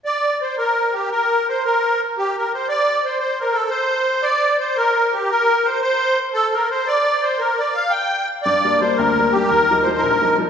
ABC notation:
X:1
M:6/8
L:1/8
Q:3/8=114
K:Gm
V:1 name="Accordion"
d2 c B2 G | B2 c B2 z | G B c d2 c | c B A c3 |
d2 c B2 G | B2 c c2 z | A B c d2 c | B d f g2 z |
d2 c B2 G | B2 c B2 z |]
V:2 name="Grand piano" clef=bass
z6 | z6 | z6 | z6 |
z6 | z6 | z6 | z6 |
G,, [G,B,D] [G,B,D] D,, [G,B,D] [G,B,D] | E,, [F,G,E] [F,G,E] B,,, [F,G,E] [F,G,E] |]